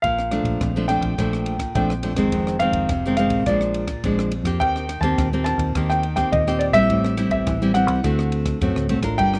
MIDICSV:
0, 0, Header, 1, 5, 480
1, 0, Start_track
1, 0, Key_signature, -2, "major"
1, 0, Tempo, 571973
1, 33, Time_signature, 4, 2, 24, 8
1, 7884, End_track
2, 0, Start_track
2, 0, Title_t, "Grand piano"
2, 0, Program_c, 0, 0
2, 18, Note_on_c, 0, 77, 95
2, 711, Note_off_c, 0, 77, 0
2, 738, Note_on_c, 0, 79, 88
2, 1460, Note_off_c, 0, 79, 0
2, 1472, Note_on_c, 0, 79, 76
2, 2176, Note_on_c, 0, 77, 86
2, 2213, Note_off_c, 0, 79, 0
2, 2630, Note_off_c, 0, 77, 0
2, 2657, Note_on_c, 0, 77, 80
2, 2909, Note_on_c, 0, 74, 74
2, 2911, Note_off_c, 0, 77, 0
2, 3596, Note_off_c, 0, 74, 0
2, 3860, Note_on_c, 0, 79, 100
2, 4200, Note_off_c, 0, 79, 0
2, 4202, Note_on_c, 0, 81, 84
2, 4550, Note_off_c, 0, 81, 0
2, 4567, Note_on_c, 0, 81, 85
2, 4948, Note_on_c, 0, 79, 86
2, 4950, Note_off_c, 0, 81, 0
2, 5156, Note_off_c, 0, 79, 0
2, 5169, Note_on_c, 0, 79, 83
2, 5291, Note_off_c, 0, 79, 0
2, 5305, Note_on_c, 0, 75, 78
2, 5530, Note_on_c, 0, 74, 80
2, 5531, Note_off_c, 0, 75, 0
2, 5572, Note_off_c, 0, 74, 0
2, 5651, Note_on_c, 0, 76, 100
2, 6108, Note_off_c, 0, 76, 0
2, 6136, Note_on_c, 0, 76, 80
2, 6478, Note_off_c, 0, 76, 0
2, 6496, Note_on_c, 0, 78, 87
2, 6951, Note_off_c, 0, 78, 0
2, 7703, Note_on_c, 0, 79, 102
2, 7884, Note_off_c, 0, 79, 0
2, 7884, End_track
3, 0, Start_track
3, 0, Title_t, "Nylon-string guitar"
3, 0, Program_c, 1, 24
3, 38, Note_on_c, 1, 46, 58
3, 265, Note_on_c, 1, 53, 49
3, 268, Note_on_c, 1, 57, 55
3, 273, Note_on_c, 1, 62, 57
3, 491, Note_off_c, 1, 46, 0
3, 518, Note_on_c, 1, 41, 52
3, 590, Note_off_c, 1, 53, 0
3, 591, Note_off_c, 1, 57, 0
3, 594, Note_off_c, 1, 62, 0
3, 639, Note_on_c, 1, 53, 60
3, 642, Note_on_c, 1, 57, 53
3, 646, Note_on_c, 1, 62, 64
3, 717, Note_off_c, 1, 53, 0
3, 719, Note_off_c, 1, 57, 0
3, 720, Note_off_c, 1, 62, 0
3, 748, Note_on_c, 1, 53, 51
3, 751, Note_on_c, 1, 57, 50
3, 754, Note_on_c, 1, 62, 61
3, 951, Note_off_c, 1, 53, 0
3, 953, Note_off_c, 1, 57, 0
3, 954, Note_off_c, 1, 62, 0
3, 971, Note_off_c, 1, 41, 0
3, 994, Note_on_c, 1, 53, 52
3, 995, Note_on_c, 1, 46, 57
3, 999, Note_on_c, 1, 57, 61
3, 1002, Note_on_c, 1, 62, 55
3, 1301, Note_off_c, 1, 53, 0
3, 1305, Note_off_c, 1, 57, 0
3, 1305, Note_off_c, 1, 62, 0
3, 1449, Note_off_c, 1, 46, 0
3, 1468, Note_on_c, 1, 41, 48
3, 1473, Note_on_c, 1, 53, 50
3, 1473, Note_on_c, 1, 57, 49
3, 1480, Note_on_c, 1, 62, 57
3, 1612, Note_off_c, 1, 53, 0
3, 1614, Note_off_c, 1, 57, 0
3, 1615, Note_off_c, 1, 62, 0
3, 1704, Note_on_c, 1, 53, 50
3, 1708, Note_on_c, 1, 57, 47
3, 1712, Note_on_c, 1, 62, 51
3, 1779, Note_off_c, 1, 53, 0
3, 1782, Note_off_c, 1, 57, 0
3, 1783, Note_off_c, 1, 62, 0
3, 1820, Note_on_c, 1, 51, 61
3, 1824, Note_on_c, 1, 56, 54
3, 1825, Note_on_c, 1, 60, 70
3, 1925, Note_off_c, 1, 41, 0
3, 1956, Note_on_c, 1, 41, 61
3, 2147, Note_off_c, 1, 51, 0
3, 2148, Note_off_c, 1, 56, 0
3, 2149, Note_off_c, 1, 60, 0
3, 2188, Note_on_c, 1, 51, 51
3, 2193, Note_on_c, 1, 56, 53
3, 2197, Note_on_c, 1, 60, 56
3, 2409, Note_off_c, 1, 41, 0
3, 2414, Note_off_c, 1, 51, 0
3, 2417, Note_off_c, 1, 56, 0
3, 2419, Note_off_c, 1, 60, 0
3, 2436, Note_on_c, 1, 48, 53
3, 2564, Note_on_c, 1, 51, 62
3, 2568, Note_on_c, 1, 56, 53
3, 2575, Note_on_c, 1, 60, 70
3, 2639, Note_off_c, 1, 51, 0
3, 2642, Note_off_c, 1, 56, 0
3, 2643, Note_off_c, 1, 60, 0
3, 2671, Note_on_c, 1, 51, 57
3, 2675, Note_on_c, 1, 56, 59
3, 2679, Note_on_c, 1, 60, 66
3, 2872, Note_off_c, 1, 51, 0
3, 2874, Note_off_c, 1, 56, 0
3, 2877, Note_off_c, 1, 60, 0
3, 2889, Note_off_c, 1, 48, 0
3, 2918, Note_on_c, 1, 46, 49
3, 2922, Note_on_c, 1, 56, 52
3, 2923, Note_on_c, 1, 53, 51
3, 2927, Note_on_c, 1, 62, 62
3, 3224, Note_off_c, 1, 53, 0
3, 3226, Note_off_c, 1, 56, 0
3, 3227, Note_off_c, 1, 62, 0
3, 3371, Note_off_c, 1, 46, 0
3, 3393, Note_on_c, 1, 41, 51
3, 3397, Note_on_c, 1, 53, 51
3, 3400, Note_on_c, 1, 62, 56
3, 3402, Note_on_c, 1, 56, 56
3, 3618, Note_off_c, 1, 53, 0
3, 3619, Note_off_c, 1, 56, 0
3, 3620, Note_off_c, 1, 62, 0
3, 3737, Note_on_c, 1, 58, 54
3, 3743, Note_on_c, 1, 60, 55
3, 3748, Note_on_c, 1, 67, 66
3, 3849, Note_off_c, 1, 41, 0
3, 3877, Note_on_c, 1, 51, 59
3, 4066, Note_off_c, 1, 58, 0
3, 4067, Note_off_c, 1, 60, 0
3, 4071, Note_off_c, 1, 67, 0
3, 4221, Note_on_c, 1, 58, 57
3, 4225, Note_on_c, 1, 60, 65
3, 4230, Note_on_c, 1, 67, 68
3, 4330, Note_off_c, 1, 51, 0
3, 4352, Note_on_c, 1, 46, 51
3, 4427, Note_off_c, 1, 58, 0
3, 4429, Note_off_c, 1, 60, 0
3, 4431, Note_off_c, 1, 67, 0
3, 4473, Note_on_c, 1, 58, 61
3, 4477, Note_on_c, 1, 60, 59
3, 4482, Note_on_c, 1, 67, 59
3, 4794, Note_off_c, 1, 58, 0
3, 4796, Note_off_c, 1, 60, 0
3, 4797, Note_off_c, 1, 67, 0
3, 4808, Note_off_c, 1, 46, 0
3, 4834, Note_on_c, 1, 51, 55
3, 4835, Note_on_c, 1, 58, 54
3, 4838, Note_on_c, 1, 60, 53
3, 4844, Note_on_c, 1, 67, 53
3, 5057, Note_off_c, 1, 58, 0
3, 5059, Note_off_c, 1, 60, 0
3, 5062, Note_off_c, 1, 67, 0
3, 5172, Note_on_c, 1, 58, 58
3, 5176, Note_on_c, 1, 60, 60
3, 5182, Note_on_c, 1, 67, 64
3, 5289, Note_off_c, 1, 51, 0
3, 5308, Note_on_c, 1, 46, 51
3, 5383, Note_off_c, 1, 58, 0
3, 5386, Note_off_c, 1, 60, 0
3, 5387, Note_off_c, 1, 67, 0
3, 5432, Note_on_c, 1, 58, 48
3, 5436, Note_on_c, 1, 60, 55
3, 5438, Note_on_c, 1, 67, 64
3, 5633, Note_off_c, 1, 58, 0
3, 5634, Note_off_c, 1, 60, 0
3, 5636, Note_off_c, 1, 67, 0
3, 5654, Note_on_c, 1, 55, 60
3, 5660, Note_on_c, 1, 60, 61
3, 5665, Note_on_c, 1, 64, 56
3, 5766, Note_off_c, 1, 46, 0
3, 5787, Note_on_c, 1, 45, 54
3, 6008, Note_off_c, 1, 55, 0
3, 6012, Note_off_c, 1, 60, 0
3, 6014, Note_off_c, 1, 64, 0
3, 6018, Note_on_c, 1, 55, 50
3, 6022, Note_on_c, 1, 60, 58
3, 6027, Note_on_c, 1, 64, 54
3, 6245, Note_off_c, 1, 45, 0
3, 6266, Note_on_c, 1, 52, 50
3, 6347, Note_off_c, 1, 55, 0
3, 6349, Note_off_c, 1, 60, 0
3, 6350, Note_off_c, 1, 64, 0
3, 6394, Note_on_c, 1, 55, 62
3, 6398, Note_on_c, 1, 60, 64
3, 6401, Note_on_c, 1, 64, 63
3, 6474, Note_off_c, 1, 55, 0
3, 6477, Note_off_c, 1, 60, 0
3, 6478, Note_off_c, 1, 64, 0
3, 6500, Note_on_c, 1, 55, 53
3, 6505, Note_on_c, 1, 60, 52
3, 6509, Note_on_c, 1, 64, 60
3, 6708, Note_off_c, 1, 55, 0
3, 6709, Note_off_c, 1, 60, 0
3, 6712, Note_off_c, 1, 64, 0
3, 6725, Note_off_c, 1, 52, 0
3, 6745, Note_on_c, 1, 50, 52
3, 6748, Note_on_c, 1, 57, 55
3, 6752, Note_on_c, 1, 60, 53
3, 6755, Note_on_c, 1, 66, 54
3, 7193, Note_off_c, 1, 57, 0
3, 7194, Note_off_c, 1, 60, 0
3, 7195, Note_off_c, 1, 66, 0
3, 7205, Note_off_c, 1, 50, 0
3, 7226, Note_on_c, 1, 45, 50
3, 7231, Note_on_c, 1, 57, 52
3, 7235, Note_on_c, 1, 66, 60
3, 7237, Note_on_c, 1, 60, 52
3, 7433, Note_off_c, 1, 57, 0
3, 7434, Note_off_c, 1, 60, 0
3, 7436, Note_off_c, 1, 66, 0
3, 7463, Note_on_c, 1, 57, 47
3, 7466, Note_on_c, 1, 60, 52
3, 7471, Note_on_c, 1, 66, 52
3, 7540, Note_off_c, 1, 57, 0
3, 7542, Note_off_c, 1, 60, 0
3, 7543, Note_off_c, 1, 66, 0
3, 7577, Note_on_c, 1, 62, 49
3, 7581, Note_on_c, 1, 65, 53
3, 7586, Note_on_c, 1, 70, 61
3, 7687, Note_off_c, 1, 45, 0
3, 7703, Note_on_c, 1, 55, 60
3, 7884, Note_off_c, 1, 55, 0
3, 7884, Note_off_c, 1, 62, 0
3, 7884, Note_off_c, 1, 65, 0
3, 7884, Note_off_c, 1, 70, 0
3, 7884, End_track
4, 0, Start_track
4, 0, Title_t, "Fingered electric bass"
4, 0, Program_c, 2, 33
4, 33, Note_on_c, 2, 34, 87
4, 338, Note_off_c, 2, 34, 0
4, 363, Note_on_c, 2, 34, 74
4, 477, Note_off_c, 2, 34, 0
4, 510, Note_on_c, 2, 34, 86
4, 817, Note_off_c, 2, 34, 0
4, 845, Note_on_c, 2, 34, 85
4, 958, Note_off_c, 2, 34, 0
4, 991, Note_on_c, 2, 34, 82
4, 1399, Note_off_c, 2, 34, 0
4, 1469, Note_on_c, 2, 34, 87
4, 1776, Note_off_c, 2, 34, 0
4, 1801, Note_on_c, 2, 30, 81
4, 1951, Note_off_c, 2, 30, 0
4, 1951, Note_on_c, 2, 29, 87
4, 2257, Note_off_c, 2, 29, 0
4, 2282, Note_on_c, 2, 29, 73
4, 2396, Note_off_c, 2, 29, 0
4, 2427, Note_on_c, 2, 29, 93
4, 2758, Note_off_c, 2, 29, 0
4, 2758, Note_on_c, 2, 33, 82
4, 2874, Note_off_c, 2, 33, 0
4, 2906, Note_on_c, 2, 34, 90
4, 3316, Note_off_c, 2, 34, 0
4, 3389, Note_on_c, 2, 34, 91
4, 3696, Note_off_c, 2, 34, 0
4, 3721, Note_on_c, 2, 41, 76
4, 3870, Note_off_c, 2, 41, 0
4, 3870, Note_on_c, 2, 39, 90
4, 4176, Note_off_c, 2, 39, 0
4, 4202, Note_on_c, 2, 39, 77
4, 4316, Note_off_c, 2, 39, 0
4, 4347, Note_on_c, 2, 39, 89
4, 4655, Note_off_c, 2, 39, 0
4, 4680, Note_on_c, 2, 39, 83
4, 4795, Note_off_c, 2, 39, 0
4, 4828, Note_on_c, 2, 39, 91
4, 5238, Note_off_c, 2, 39, 0
4, 5311, Note_on_c, 2, 39, 87
4, 5617, Note_off_c, 2, 39, 0
4, 5640, Note_on_c, 2, 34, 78
4, 5788, Note_off_c, 2, 34, 0
4, 5788, Note_on_c, 2, 33, 85
4, 6096, Note_off_c, 2, 33, 0
4, 6120, Note_on_c, 2, 33, 69
4, 6236, Note_off_c, 2, 33, 0
4, 6268, Note_on_c, 2, 33, 93
4, 6601, Note_off_c, 2, 33, 0
4, 6601, Note_on_c, 2, 36, 80
4, 6716, Note_off_c, 2, 36, 0
4, 6749, Note_on_c, 2, 38, 92
4, 7159, Note_off_c, 2, 38, 0
4, 7230, Note_on_c, 2, 42, 81
4, 7339, Note_off_c, 2, 42, 0
4, 7354, Note_on_c, 2, 38, 76
4, 7457, Note_off_c, 2, 38, 0
4, 7462, Note_on_c, 2, 36, 71
4, 7556, Note_off_c, 2, 36, 0
4, 7561, Note_on_c, 2, 33, 71
4, 7709, Note_on_c, 2, 31, 76
4, 7722, Note_off_c, 2, 33, 0
4, 7884, Note_off_c, 2, 31, 0
4, 7884, End_track
5, 0, Start_track
5, 0, Title_t, "Drums"
5, 31, Note_on_c, 9, 51, 44
5, 32, Note_on_c, 9, 36, 59
5, 115, Note_off_c, 9, 51, 0
5, 116, Note_off_c, 9, 36, 0
5, 156, Note_on_c, 9, 37, 55
5, 240, Note_off_c, 9, 37, 0
5, 264, Note_on_c, 9, 37, 63
5, 264, Note_on_c, 9, 51, 40
5, 348, Note_off_c, 9, 37, 0
5, 348, Note_off_c, 9, 51, 0
5, 378, Note_on_c, 9, 36, 58
5, 379, Note_on_c, 9, 51, 38
5, 462, Note_off_c, 9, 36, 0
5, 463, Note_off_c, 9, 51, 0
5, 512, Note_on_c, 9, 36, 81
5, 512, Note_on_c, 9, 37, 62
5, 512, Note_on_c, 9, 51, 40
5, 596, Note_off_c, 9, 36, 0
5, 596, Note_off_c, 9, 37, 0
5, 596, Note_off_c, 9, 51, 0
5, 744, Note_on_c, 9, 37, 58
5, 744, Note_on_c, 9, 51, 44
5, 828, Note_off_c, 9, 37, 0
5, 828, Note_off_c, 9, 51, 0
5, 858, Note_on_c, 9, 36, 58
5, 859, Note_on_c, 9, 51, 42
5, 942, Note_off_c, 9, 36, 0
5, 943, Note_off_c, 9, 51, 0
5, 992, Note_on_c, 9, 36, 59
5, 994, Note_on_c, 9, 37, 59
5, 994, Note_on_c, 9, 51, 41
5, 1076, Note_off_c, 9, 36, 0
5, 1078, Note_off_c, 9, 37, 0
5, 1078, Note_off_c, 9, 51, 0
5, 1119, Note_on_c, 9, 37, 59
5, 1203, Note_off_c, 9, 37, 0
5, 1226, Note_on_c, 9, 51, 44
5, 1310, Note_off_c, 9, 51, 0
5, 1338, Note_on_c, 9, 36, 65
5, 1340, Note_on_c, 9, 37, 65
5, 1340, Note_on_c, 9, 51, 45
5, 1421, Note_off_c, 9, 36, 0
5, 1424, Note_off_c, 9, 37, 0
5, 1424, Note_off_c, 9, 51, 0
5, 1471, Note_on_c, 9, 36, 78
5, 1471, Note_on_c, 9, 51, 42
5, 1555, Note_off_c, 9, 36, 0
5, 1555, Note_off_c, 9, 51, 0
5, 1596, Note_on_c, 9, 37, 67
5, 1680, Note_off_c, 9, 37, 0
5, 1703, Note_on_c, 9, 51, 50
5, 1787, Note_off_c, 9, 51, 0
5, 1816, Note_on_c, 9, 36, 56
5, 1816, Note_on_c, 9, 37, 64
5, 1816, Note_on_c, 9, 51, 46
5, 1900, Note_off_c, 9, 36, 0
5, 1900, Note_off_c, 9, 37, 0
5, 1900, Note_off_c, 9, 51, 0
5, 1948, Note_on_c, 9, 51, 46
5, 1949, Note_on_c, 9, 36, 58
5, 2032, Note_off_c, 9, 51, 0
5, 2033, Note_off_c, 9, 36, 0
5, 2073, Note_on_c, 9, 37, 62
5, 2157, Note_off_c, 9, 37, 0
5, 2180, Note_on_c, 9, 37, 55
5, 2180, Note_on_c, 9, 51, 48
5, 2264, Note_off_c, 9, 37, 0
5, 2264, Note_off_c, 9, 51, 0
5, 2293, Note_on_c, 9, 51, 45
5, 2295, Note_on_c, 9, 36, 54
5, 2377, Note_off_c, 9, 51, 0
5, 2378, Note_off_c, 9, 36, 0
5, 2426, Note_on_c, 9, 37, 58
5, 2426, Note_on_c, 9, 51, 50
5, 2428, Note_on_c, 9, 36, 88
5, 2509, Note_off_c, 9, 37, 0
5, 2509, Note_off_c, 9, 51, 0
5, 2512, Note_off_c, 9, 36, 0
5, 2658, Note_on_c, 9, 37, 58
5, 2658, Note_on_c, 9, 51, 45
5, 2742, Note_off_c, 9, 37, 0
5, 2742, Note_off_c, 9, 51, 0
5, 2770, Note_on_c, 9, 51, 42
5, 2774, Note_on_c, 9, 36, 61
5, 2854, Note_off_c, 9, 51, 0
5, 2857, Note_off_c, 9, 36, 0
5, 2905, Note_on_c, 9, 37, 55
5, 2905, Note_on_c, 9, 51, 47
5, 2908, Note_on_c, 9, 36, 60
5, 2989, Note_off_c, 9, 37, 0
5, 2989, Note_off_c, 9, 51, 0
5, 2992, Note_off_c, 9, 36, 0
5, 3028, Note_on_c, 9, 37, 59
5, 3112, Note_off_c, 9, 37, 0
5, 3141, Note_on_c, 9, 51, 43
5, 3225, Note_off_c, 9, 51, 0
5, 3252, Note_on_c, 9, 37, 61
5, 3252, Note_on_c, 9, 51, 48
5, 3254, Note_on_c, 9, 36, 65
5, 3336, Note_off_c, 9, 37, 0
5, 3336, Note_off_c, 9, 51, 0
5, 3338, Note_off_c, 9, 36, 0
5, 3388, Note_on_c, 9, 51, 46
5, 3389, Note_on_c, 9, 36, 84
5, 3472, Note_off_c, 9, 51, 0
5, 3473, Note_off_c, 9, 36, 0
5, 3515, Note_on_c, 9, 37, 68
5, 3599, Note_off_c, 9, 37, 0
5, 3621, Note_on_c, 9, 51, 46
5, 3705, Note_off_c, 9, 51, 0
5, 3735, Note_on_c, 9, 36, 60
5, 3737, Note_on_c, 9, 37, 63
5, 3737, Note_on_c, 9, 51, 44
5, 3819, Note_off_c, 9, 36, 0
5, 3821, Note_off_c, 9, 37, 0
5, 3821, Note_off_c, 9, 51, 0
5, 3870, Note_on_c, 9, 36, 61
5, 3871, Note_on_c, 9, 51, 41
5, 3953, Note_off_c, 9, 36, 0
5, 3955, Note_off_c, 9, 51, 0
5, 3994, Note_on_c, 9, 37, 54
5, 4078, Note_off_c, 9, 37, 0
5, 4104, Note_on_c, 9, 37, 63
5, 4104, Note_on_c, 9, 51, 44
5, 4188, Note_off_c, 9, 37, 0
5, 4188, Note_off_c, 9, 51, 0
5, 4216, Note_on_c, 9, 36, 52
5, 4219, Note_on_c, 9, 51, 42
5, 4300, Note_off_c, 9, 36, 0
5, 4303, Note_off_c, 9, 51, 0
5, 4349, Note_on_c, 9, 36, 89
5, 4351, Note_on_c, 9, 37, 63
5, 4351, Note_on_c, 9, 51, 45
5, 4433, Note_off_c, 9, 36, 0
5, 4435, Note_off_c, 9, 37, 0
5, 4435, Note_off_c, 9, 51, 0
5, 4582, Note_on_c, 9, 37, 66
5, 4582, Note_on_c, 9, 51, 45
5, 4666, Note_off_c, 9, 37, 0
5, 4666, Note_off_c, 9, 51, 0
5, 4694, Note_on_c, 9, 36, 58
5, 4694, Note_on_c, 9, 51, 46
5, 4778, Note_off_c, 9, 36, 0
5, 4778, Note_off_c, 9, 51, 0
5, 4827, Note_on_c, 9, 37, 61
5, 4827, Note_on_c, 9, 51, 45
5, 4828, Note_on_c, 9, 36, 59
5, 4911, Note_off_c, 9, 37, 0
5, 4911, Note_off_c, 9, 51, 0
5, 4912, Note_off_c, 9, 36, 0
5, 4953, Note_on_c, 9, 37, 62
5, 5037, Note_off_c, 9, 37, 0
5, 5062, Note_on_c, 9, 51, 39
5, 5146, Note_off_c, 9, 51, 0
5, 5175, Note_on_c, 9, 36, 62
5, 5175, Note_on_c, 9, 37, 64
5, 5175, Note_on_c, 9, 51, 48
5, 5259, Note_off_c, 9, 36, 0
5, 5259, Note_off_c, 9, 37, 0
5, 5259, Note_off_c, 9, 51, 0
5, 5309, Note_on_c, 9, 36, 88
5, 5310, Note_on_c, 9, 51, 45
5, 5393, Note_off_c, 9, 36, 0
5, 5394, Note_off_c, 9, 51, 0
5, 5436, Note_on_c, 9, 37, 67
5, 5520, Note_off_c, 9, 37, 0
5, 5544, Note_on_c, 9, 51, 46
5, 5627, Note_off_c, 9, 51, 0
5, 5656, Note_on_c, 9, 36, 59
5, 5656, Note_on_c, 9, 37, 59
5, 5656, Note_on_c, 9, 51, 46
5, 5740, Note_off_c, 9, 36, 0
5, 5740, Note_off_c, 9, 37, 0
5, 5740, Note_off_c, 9, 51, 0
5, 5789, Note_on_c, 9, 36, 57
5, 5789, Note_on_c, 9, 51, 43
5, 5873, Note_off_c, 9, 36, 0
5, 5873, Note_off_c, 9, 51, 0
5, 5912, Note_on_c, 9, 37, 65
5, 5996, Note_off_c, 9, 37, 0
5, 6021, Note_on_c, 9, 37, 62
5, 6021, Note_on_c, 9, 51, 49
5, 6105, Note_off_c, 9, 37, 0
5, 6105, Note_off_c, 9, 51, 0
5, 6134, Note_on_c, 9, 36, 56
5, 6134, Note_on_c, 9, 51, 39
5, 6217, Note_off_c, 9, 51, 0
5, 6218, Note_off_c, 9, 36, 0
5, 6266, Note_on_c, 9, 37, 62
5, 6266, Note_on_c, 9, 51, 50
5, 6268, Note_on_c, 9, 36, 90
5, 6350, Note_off_c, 9, 37, 0
5, 6350, Note_off_c, 9, 51, 0
5, 6352, Note_off_c, 9, 36, 0
5, 6500, Note_on_c, 9, 37, 63
5, 6500, Note_on_c, 9, 51, 45
5, 6584, Note_off_c, 9, 37, 0
5, 6584, Note_off_c, 9, 51, 0
5, 6613, Note_on_c, 9, 51, 49
5, 6615, Note_on_c, 9, 36, 63
5, 6697, Note_off_c, 9, 51, 0
5, 6699, Note_off_c, 9, 36, 0
5, 6749, Note_on_c, 9, 36, 59
5, 6749, Note_on_c, 9, 37, 66
5, 6749, Note_on_c, 9, 51, 44
5, 6833, Note_off_c, 9, 36, 0
5, 6833, Note_off_c, 9, 37, 0
5, 6833, Note_off_c, 9, 51, 0
5, 6872, Note_on_c, 9, 37, 62
5, 6956, Note_off_c, 9, 37, 0
5, 6982, Note_on_c, 9, 51, 47
5, 7066, Note_off_c, 9, 51, 0
5, 7096, Note_on_c, 9, 36, 69
5, 7096, Note_on_c, 9, 37, 66
5, 7096, Note_on_c, 9, 51, 49
5, 7180, Note_off_c, 9, 36, 0
5, 7180, Note_off_c, 9, 37, 0
5, 7180, Note_off_c, 9, 51, 0
5, 7229, Note_on_c, 9, 51, 46
5, 7230, Note_on_c, 9, 36, 82
5, 7313, Note_off_c, 9, 51, 0
5, 7314, Note_off_c, 9, 36, 0
5, 7354, Note_on_c, 9, 37, 67
5, 7437, Note_off_c, 9, 37, 0
5, 7462, Note_on_c, 9, 51, 49
5, 7546, Note_off_c, 9, 51, 0
5, 7575, Note_on_c, 9, 36, 58
5, 7575, Note_on_c, 9, 37, 62
5, 7575, Note_on_c, 9, 51, 48
5, 7659, Note_off_c, 9, 36, 0
5, 7659, Note_off_c, 9, 37, 0
5, 7659, Note_off_c, 9, 51, 0
5, 7710, Note_on_c, 9, 36, 58
5, 7711, Note_on_c, 9, 51, 45
5, 7794, Note_off_c, 9, 36, 0
5, 7794, Note_off_c, 9, 51, 0
5, 7835, Note_on_c, 9, 37, 62
5, 7884, Note_off_c, 9, 37, 0
5, 7884, End_track
0, 0, End_of_file